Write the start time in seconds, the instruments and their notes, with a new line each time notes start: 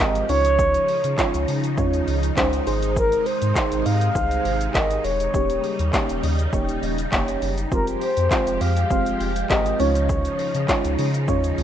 Already playing: string machine F3 G#3 G4
0.00 sub bass G#1, synth stab G#3 C4 F4 G4 A#4, soft synth lead D#5, snare
0.15 closed hi-hat, shaker
0.29 sub bass C#2, string machine C#3 D#4, synth stab G#3 C#4 D#4 F4 C#5, soft synth lead C#5, open hi-hat, shaker
0.45 closed hi-hat, shaker
0.59 kick, shaker
0.74 closed hi-hat, shaker
0.88 open hi-hat, shaker
1.04 sub bass C#3, closed hi-hat, shaker
1.18 synth stab G#3 C#4 D#4 F4 C#5, kick, snare, clap, shaker
1.34 sub bass C#2, closed hi-hat, shaker
1.48 sub bass C#3, open hi-hat, shaker
1.64 closed hi-hat, shaker
1.77 sub bass D#2, synth stab G#3 C#4 D#4 F4 C#5, kick, shaker
1.93 closed hi-hat, shaker
2.07 sub bass C#2, open hi-hat, shaker
2.23 closed hi-hat, shaker
2.37 sub bass C#2, synth stab G#3 C#4 D#4 F4 C5, kick, snare, clap, shaker
2.53 closed hi-hat, shaker
2.67 sub bass G#1, string machine C3 G#3, synth stab D#4 G#4 C5, open hi-hat, shaker
2.82 closed hi-hat, shaker
2.96 soft synth lead A#4, kick, shaker
3.12 closed hi-hat, shaker
3.26 soft synth lead C5, open hi-hat, shaker
3.42 sub bass G#2, closed hi-hat, shaker
3.56 synth stab D#4 G#4 A#4, kick, snare, clap, shaker
3.72 sub bass G#1, closed hi-hat, shaker
3.86 sub bass G#2, soft synth lead F5, open hi-hat, shaker
4.01 closed hi-hat, shaker
4.15 sub bass C2, synth stab D#4 G#4 C5, kick, shaker
4.31 closed hi-hat, shaker
4.45 sub bass G#1, open hi-hat, shaker
4.61 closed hi-hat, shaker
4.74 sub bass G#1, synth stab D#4 G#4 A#4, soft synth lead D#5, kick, snare, clap, shaker
4.90 closed hi-hat, shaker
5.04 sub bass E1, soft synth lead C#5, open hi-hat, shaker
5.20 closed hi-hat, shaker
5.34 sub bass D#1, string machine C#3 G3 D#4, synth stab A#3 C#4 D#4 G4 C#5, kick, shaker
5.50 closed hi-hat, shaker
5.64 open hi-hat, shaker
5.79 sub bass D#2, closed hi-hat, shaker
5.93 synth stab A#3 C#4 D#4 G4 C#5, kick, snare, clap, shaker
6.09 sub bass D#1, closed hi-hat, shaker
6.23 sub bass D#2, open hi-hat, shaker
6.39 closed hi-hat, shaker
6.53 sub bass D#1, synth stab A#3 C#4 D#4 G4 C#5, kick, shaker
6.69 closed hi-hat, shaker
6.82 sub bass D#1, open hi-hat, shaker
6.98 closed hi-hat, shaker
7.12 sub bass F1, synth stab A#3 C#4 D#4 G4 C#5, kick, snare, clap, shaker
7.28 closed hi-hat, shaker
7.42 sub bass F#1, open hi-hat, shaker
7.58 closed hi-hat, shaker
7.72 sub bass F1, string machine F3 G#3 G4, synth stab G#3 C4 F4 G4 C5, soft synth lead A#4, kick, shaker
7.87 closed hi-hat, shaker
8.01 soft synth lead C5, open hi-hat, shaker
8.17 sub bass F2, closed hi-hat, shaker
8.31 synth stab G#3 C4 F4 G4 C5, kick, snare, clap, shaker
8.47 sub bass F1, closed hi-hat, shaker
8.61 sub bass F2, soft synth lead F5, open hi-hat, shaker
8.76 closed hi-hat, shaker
8.90 sub bass F1, synth stab G#3 C4 F4 G4 C5, kick, shaker
9.06 closed hi-hat, shaker
9.20 sub bass F1, open hi-hat, shaker
9.36 closed hi-hat, shaker
9.50 sub bass G#1, synth stab G#3 C4 F4 G4 A#4, soft synth lead D#5, kick, snare, clap, shaker
9.65 closed hi-hat, shaker
9.79 sub bass C#2, string machine C#3 D#4, synth stab G#3 C#4 D#4 F4 C#5, soft synth lead C#5, open hi-hat, shaker
9.95 closed hi-hat, shaker
10.09 kick, shaker
10.25 closed hi-hat, shaker
10.39 open hi-hat, shaker
10.55 sub bass C#3, closed hi-hat, shaker
10.68 synth stab G#3 C#4 D#4 F4 C#5, kick, snare, clap, shaker
10.84 sub bass C#2, closed hi-hat, shaker
10.98 sub bass C#3, open hi-hat, shaker
11.14 closed hi-hat, shaker
11.28 sub bass D#2, synth stab G#3 C#4 D#4 F4 C#5, kick, shaker
11.44 closed hi-hat, shaker
11.58 sub bass C#2, open hi-hat, shaker